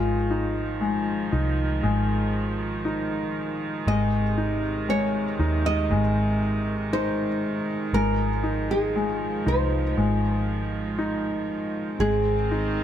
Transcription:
0.00 1.28 G#1 medium
0.00 11.96 D#3 medium
0.00 3.82 F3 medium
0.00 0.79 G#3 medium
0.00 12.84 G#3 medium
0.00 1.29 F4 medium
0.31 1.31 D#4 soft
0.81 1.81 G#3 soft
1.32 1.80 C2 medium
1.32 2.84 D#4 soft
1.83 3.83 G#1 medium
1.83 3.82 G#3 soft
2.85 3.84 D#4 soft
3.86 5.35 G#1 medium
3.86 7.89 C3 medium
3.86 4.87 G#3 soft
3.86 4.89 D#5 medium
4.38 5.38 D#4 soft
4.89 5.89 G#3 soft
4.89 5.66 C#5 medium
5.39 5.91 D#2 medium
5.39 6.91 D#4 soft
5.66 6.93 D#5 medium
5.90 7.89 G#1 medium
5.90 7.90 G#3 soft
6.93 7.91 D#4 soft
6.93 7.94 C5 medium
7.93 9.42 G#1 medium
7.93 11.96 F3 medium
7.93 8.94 G#3 medium
7.93 8.71 A#4 medium
8.43 9.45 D#4 soft
8.71 9.43 G#4 medium
8.96 9.96 G#3 soft
9.46 9.94 C2 medium
9.46 10.97 D#4 soft
9.46 10.45 C5 medium
9.97 11.96 G#1 medium
9.97 11.96 G#3 soft
10.99 11.97 D#4 soft
11.99 12.84 G#1 medium
11.99 12.84 D#3 medium
11.99 12.84 G#3 medium
11.99 12.84 C4 medium
11.99 12.84 G#4 medium
12.51 12.84 D#4 soft

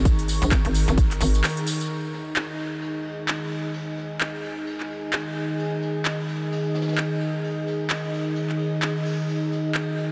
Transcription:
0.00 0.40 G#1 loud
0.00 1.86 D#3 medium
0.00 1.86 D#4 medium
0.00 1.88 D#4 medium
0.00 1.90 G#4 medium
0.00 1.93 A#4 medium
0.00 1.86 A#5 medium
0.00 1.89 C#6 loud
0.05 kick loud
0.05 closed hi-hat medium
0.05 ride medium
0.05 tambourine soft
0.19 closed hi-hat medium
0.28 snare soft
0.28 open hi-hat loud
0.28 ride medium
0.28 tambourine medium
0.42 0.50 A#1 loud
0.42 closed hi-hat soft
0.42 tambourine soft
0.51 0.63 G#1 loud
0.51 kick loud
0.51 snare loud
0.51 clap loud
0.51 closed hi-hat medium
0.51 ride medium
0.51 tambourine soft
0.65 0.86 G#1 loud
0.65 closed hi-hat medium
0.74 open hi-hat loud
0.74 ride medium
0.74 tambourine medium
0.88 1.19 G#1 loud
0.88 closed hi-hat soft
0.88 tambourine soft
0.98 kick loud
0.98 closed hi-hat medium
0.98 ride medium
0.98 tambourine soft
1.11 clap soft
1.11 closed hi-hat medium
1.21 1.42 G#1 loud
1.21 open hi-hat loud
1.21 ride medium
1.21 tambourine medium
1.34 closed hi-hat soft
1.34 tambourine soft
1.43 snare loud
1.43 clap loud
1.43 open hi-hat medium
1.43 ride medium
1.43 tambourine soft
1.57 closed hi-hat medium
1.57 ride soft
1.67 open hi-hat loud
1.67 open hi-hat medium
1.67 tambourine medium
1.80 closed hi-hat soft
1.80 tambourine soft
1.90 10.12 D#3 medium
1.90 10.12 D#4 medium
1.90 9.24 G#4 medium
1.90 5.58 G#5 medium
1.90 ride medium
2.06 10.12 D#5 medium
2.13 snare soft
2.13 ride medium
2.36 clap loud
2.36 ride medium
2.53 10.12 G#4 medium
2.59 ride medium
2.82 ride medium
3.05 ride medium
3.28 clap loud
3.28 ride medium
3.51 ride medium
3.74 ride medium
3.97 snare soft
3.97 ride medium
4.21 clap loud
4.21 ride medium
4.44 ride medium
4.67 ride medium
4.80 clap soft
4.91 ride medium
5.13 clap loud
5.13 ride medium
5.36 ride medium
5.59 9.27 D#5 medium
5.59 ride medium
5.82 snare soft
5.82 ride medium
6.05 clap loud
6.05 ride medium
6.29 ride medium
6.52 ride medium
6.75 snare medium
6.75 ride medium
6.81 snare medium
6.81 ride medium
6.88 snare medium
6.88 ride medium
6.93 snare medium
6.93 ride medium
6.97 clap loud
6.97 ride medium
7.21 ride medium
7.44 ride medium
7.67 snare soft
7.67 ride medium
7.90 clap loud
7.90 ride medium
8.13 ride medium
8.36 ride medium
8.50 clap soft
8.59 ride medium
8.82 clap loud
8.82 ride medium
8.95 ride soft
9.05 open hi-hat medium
9.28 10.12 F#4 medium
9.28 10.12 G#5 medium
9.28 ride medium
9.51 snare soft
9.51 ride medium
9.75 clap loud
9.75 ride medium
9.97 ride medium

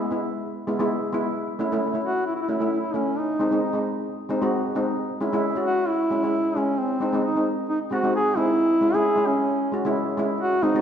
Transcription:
0.00 0.22 G#3 medium
0.11 0.44 G#3 medium
0.11 0.45 B3 medium
0.11 0.45 E4 medium
0.67 0.75 G#3 medium
0.67 0.75 B3 medium
0.67 0.75 E4 medium
0.80 1.00 G#3 loud
0.80 1.00 B3 medium
0.80 1.00 E4 medium
1.13 1.35 G#3 medium
1.13 1.36 B3 medium
1.13 1.36 E4 loud
1.59 1.66 A3 medium
1.59 1.66 C#4 medium
1.59 1.67 E4 loud
1.72 1.84 A3 medium
1.72 1.84 C#4 medium
1.72 1.85 E4 medium
1.94 2.27 A3 medium
1.94 2.27 C#4 medium
1.94 2.27 E4 medium
2.04 2.25 F#4 loud
2.27 2.34 E4 medium
2.36 2.41 E4 medium
2.42 2.48 E4 medium
2.48 2.56 A3 medium
2.48 2.56 C#4 medium
2.48 2.57 E4 medium
2.58 2.81 A3 medium
2.58 2.81 C#4 medium
2.58 2.65 E4 medium
2.58 2.82 E4 medium
2.66 2.72 E4 medium
2.72 2.79 E4 medium
2.80 2.96 E4 medium
2.94 3.17 A3 medium
2.94 3.20 C#4 medium
2.94 3.17 C#4 medium
2.94 3.18 E4 medium
3.18 3.62 D#4 medium
3.39 3.47 G#3 medium
3.39 3.47 C4 medium
3.39 3.48 D#4 medium
3.51 3.64 G#3 medium
3.51 3.65 C4 medium
3.51 3.65 D#4 medium
3.63 3.84 D#4 medium
3.73 4.07 G#3 medium
3.73 4.07 C4 medium
3.73 4.08 D#4 medium
4.29 4.37 G#3 medium
4.29 4.37 C4 medium
4.29 4.38 D#4 medium
4.42 4.62 G#3 medium
4.42 4.62 C4 medium
4.42 4.63 F#4 medium
4.75 4.98 G#3 medium
4.75 4.98 C4 medium
4.75 4.98 D#4 medium
5.21 5.28 G#3 medium
5.21 5.28 C#4 medium
5.21 5.28 E4 medium
5.33 5.46 G#3 medium
5.33 5.46 C#4 medium
5.33 5.46 E4 loud
5.55 5.88 G#3 medium
5.55 5.89 C#4 medium
5.55 5.89 F#4 medium
5.66 5.89 F#4 loud
5.88 6.58 E4 loud
6.11 6.18 G#3 medium
6.11 6.19 C#4 medium
6.11 6.19 E4 medium
6.23 6.43 G#3 medium
6.23 6.44 C#4 medium
6.23 6.44 E4 medium
6.56 6.79 G#3 medium
6.56 6.79 C#4 medium
6.56 6.80 C#4 medium
6.56 6.79 E4 medium
6.79 7.24 C4 medium
7.00 7.08 G#3 medium
7.00 7.08 C4 medium
7.00 7.09 D#4 medium
7.13 7.26 G#3 medium
7.13 7.27 C4 medium
7.13 7.27 D#4 medium
7.25 7.45 D#4 medium
7.35 7.69 G#3 medium
7.35 7.70 C4 medium
7.35 7.70 D#4 medium
7.69 7.80 D#4 medium
7.91 7.99 G#3 medium
7.91 7.99 C4 medium
7.91 8.00 F#4 medium
7.91 8.13 F#4 loud
8.03 8.24 G#3 medium
8.03 8.24 C4 medium
8.03 8.24 D#4 medium
8.16 8.38 G#4 loud
8.36 8.59 G#3 medium
8.36 8.60 C4 medium
8.36 8.60 D#4 medium
8.36 8.96 E4 loud
8.81 8.89 G#3 medium
8.81 8.89 C#4 medium
8.81 8.90 E4 medium
8.94 9.07 G#3 medium
8.94 9.07 C#4 medium
8.94 9.07 E4 medium
8.94 9.28 G#4 loud
9.16 9.49 G#3 medium
9.16 9.50 C#4 medium
9.16 9.50 E4 medium
9.27 9.72 C#4 medium
9.72 9.80 G#3 medium
9.72 9.80 C#4 medium
9.72 9.80 F#4 medium
9.85 10.05 G#3 medium
9.85 10.05 C#4 medium
9.85 10.06 E4 loud
10.17 10.40 G#3 medium
10.17 10.40 C#4 medium
10.17 10.41 E4 loud
10.41 10.64 F#4 loud
10.62 10.70 G#3 medium
10.62 10.70 C4 medium
10.62 10.81 D#4 loud
10.62 10.71 D#4 medium
10.75 10.81 G#3 medium
10.75 10.81 C4 medium
10.75 10.81 F#4 medium

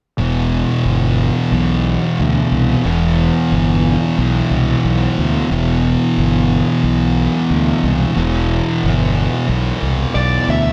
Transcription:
0.19 0.63 E1 medium
0.19 1.52 E2 medium
0.19 1.51 B2 loud
0.23 1.55 E3 medium
0.85 1.29 G1 medium
1.52 1.96 B1 medium
1.52 2.83 E2 medium
1.52 2.84 B2 medium
1.56 2.88 E3 medium
2.19 2.41 D2 medium
2.52 2.74 C2 medium
2.84 3.29 E1 medium
2.84 4.16 E2 medium
2.84 4.17 B2 medium
2.88 4.20 E3 loud
3.52 3.96 G1 medium
4.17 4.40 B1 loud
4.17 5.50 E2 medium
4.17 5.49 B2 medium
4.17 5.53 E3 medium
4.51 4.73 C2 medium
4.84 5.06 B1 medium
5.18 5.40 D2 medium
5.50 5.95 E1 medium
5.50 6.82 E2 medium
5.50 6.83 B2 medium
5.50 6.86 E3 medium
6.17 6.61 G1 medium
6.82 7.27 B1 medium
6.82 8.13 E2 medium
6.82 8.14 B2 medium
6.86 8.17 E3 medium
7.50 7.72 D2 medium
7.83 8.05 C2 medium
8.14 8.60 E1 medium
8.14 9.45 E2 medium
8.14 9.46 B2 loud
8.14 9.47 E3 loud
8.84 9.27 G1 medium
9.47 9.71 B1 medium
9.47 10.73 E2 medium
9.47 10.73 B2 medium
9.47 10.73 E3 medium
9.82 10.04 C2 medium
10.15 10.36 B1 medium
10.15 10.49 D5 medium
10.48 10.69 D2 medium
10.48 10.73 E5 medium

